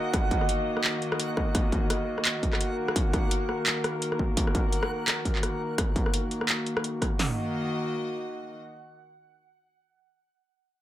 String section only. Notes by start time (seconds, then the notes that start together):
Already playing: D#3 A#3 F#4 D#5
2.74 A#4
7.19 D#3
7.26 A#3
7.31 F#4
7.35 D#5